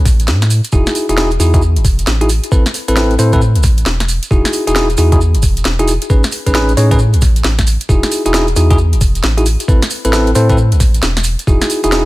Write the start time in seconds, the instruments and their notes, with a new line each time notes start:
Already playing: sub bass A1
0.05 kick, snare, open hi-hat, maracas
0.20 closed hi-hat, maracas
0.27 sub bass A2, snare, maracas
0.42 snare, closed hi-hat, maracas
0.50 open hi-hat, maracas
0.64 closed hi-hat, maracas
0.72 sub bass E1, tine electric piano D#4 E4 F#4 G#4, kick, maracas
0.86 snare, closed hi-hat, maracas
0.95 open hi-hat, maracas
1.09 sub bass E1, tine electric piano D#4 E4 F#4 G#4, closed hi-hat, maracas
1.17 tine electric piano D#4 E4 F#4 G#4, snare, maracas
1.31 closed hi-hat, maracas
1.40 sub bass E2, tine electric piano D#4 E4 F#4 G#4, open hi-hat, maracas
1.54 tine electric piano D#4 E4 F#4 G#4, kick, closed hi-hat, maracas
1.62 maracas
1.76 sub bass E1, closed hi-hat, maracas
1.85 kick, open hi-hat, maracas
1.99 closed hi-hat, maracas
2.07 sub bass A1, snare, maracas
2.21 tine electric piano D#4 E4 F#4 G#4, closed hi-hat, maracas
2.29 open hi-hat, maracas
2.44 closed hi-hat, maracas
2.52 sub bass A1, tine electric piano C4 E4 A4 B4, kick, maracas
2.66 snare, closed hi-hat, maracas
2.74 open hi-hat, maracas
2.88 sub bass A1, tine electric piano C4 E4 A4 B4, closed hi-hat, maracas
2.96 tine electric piano C4 E4 A4 B4, snare, maracas
3.11 closed hi-hat, maracas
3.19 sub bass A2, tine electric piano C4 E4 A4 C5, open hi-hat, maracas
3.33 tine electric piano C4 E4 A4 B4, kick, closed hi-hat, maracas
3.41 maracas
3.55 sub bass A1, closed hi-hat, maracas
3.63 kick, snare, open hi-hat, maracas
3.78 closed hi-hat, maracas
3.86 sub bass E1, snare, maracas
4.00 snare, closed hi-hat, maracas
4.08 open hi-hat, maracas
4.23 closed hi-hat, maracas
4.31 sub bass E1, tine electric piano D#4 E4 F#4 G#4, kick, maracas
4.45 snare, closed hi-hat, maracas
4.53 open hi-hat, maracas
4.67 sub bass E1, tine electric piano D#4 E4 F#4 G#4, closed hi-hat, maracas
4.76 tine electric piano D#4 E4 F#4 G#4, snare, maracas
4.90 closed hi-hat, maracas
4.97 sub bass E2, tine electric piano D#4 E4 F#4 G#4, open hi-hat, maracas
5.12 tine electric piano D#4 E4 F#4 G#4, kick, closed hi-hat, maracas
5.21 maracas
5.34 sub bass E1, closed hi-hat, maracas
5.42 kick, open hi-hat, maracas
5.57 closed hi-hat, maracas
5.64 sub bass E1, snare, maracas
5.79 tine electric piano D#4 E4 F#4 G#4, closed hi-hat, maracas
5.88 open hi-hat, maracas
6.02 closed hi-hat, maracas
6.10 sub bass A1, tine electric piano C#4 D#4 G#4 B4, kick, maracas
6.23 snare, closed hi-hat, maracas
6.32 open hi-hat, maracas
6.46 sub bass A1, tine electric piano C#4 D#4 G#4 B4, kick, closed hi-hat, maracas
6.55 tine electric piano C#4 D#4 G#4 B4, snare, maracas
6.69 closed hi-hat, maracas
6.77 sub bass A2, tine electric piano C#4 D#4 G#4 C#5, open hi-hat, maracas
6.91 tine electric piano C#4 D#4 G#4 B4, kick, closed hi-hat, maracas
6.99 maracas
7.13 sub bass A1, closed hi-hat, maracas
7.21 kick, snare, open hi-hat, maracas
7.36 closed hi-hat, maracas
7.44 sub bass A1, snare, maracas
7.58 kick, snare, closed hi-hat, maracas
7.67 open hi-hat, maracas
7.81 closed hi-hat, maracas
7.89 sub bass E1, tine electric piano D#4 E4 F#4 G#4, kick, maracas
8.03 snare, closed hi-hat, maracas
8.12 open hi-hat, maracas
8.26 sub bass E1, tine electric piano D#4 E4 F#4 G#4, closed hi-hat, maracas
8.34 tine electric piano D#4 E4 F#4 G#4, snare, maracas
8.47 closed hi-hat, maracas
8.56 sub bass E2, tine electric piano D#4 E4 F#4 G#4, open hi-hat, maracas
8.70 tine electric piano D#4 E4 F#4 G#4, kick, closed hi-hat, maracas
8.78 maracas
8.93 sub bass E1, closed hi-hat, maracas
9.01 kick, open hi-hat, maracas
9.15 closed hi-hat, maracas
9.24 sub bass A1, snare, maracas
9.38 tine electric piano D#4 E4 F#4 G#4, closed hi-hat, maracas
9.46 open hi-hat, maracas
9.60 closed hi-hat, maracas
9.68 sub bass A1, tine electric piano C4 E4 A4 B4, kick, maracas
9.82 snare, closed hi-hat, maracas
9.90 open hi-hat, maracas
10.05 sub bass A1, tine electric piano C4 E4 A4 B4, closed hi-hat, maracas
10.13 tine electric piano C4 E4 A4 B4, snare, maracas
10.27 closed hi-hat, maracas
10.35 sub bass A2, tine electric piano C4 E4 A4 C5, open hi-hat, maracas
10.49 tine electric piano C4 E4 A4 B4, kick, closed hi-hat, maracas
10.58 maracas
10.72 sub bass A1, closed hi-hat, maracas
10.80 kick, snare, open hi-hat, maracas
10.94 closed hi-hat, maracas
11.02 sub bass E1, snare, maracas
11.17 snare, closed hi-hat, maracas
11.24 open hi-hat, maracas
11.39 closed hi-hat, maracas
11.47 sub bass E1, tine electric piano D#4 E4 F#4 G#4, kick, maracas
11.61 snare, closed hi-hat, maracas
11.70 open hi-hat, maracas
11.84 sub bass E1, tine electric piano D#4 E4 F#4 G#4, closed hi-hat, maracas
11.92 tine electric piano D#4 E4 F#4 G#4, snare, maracas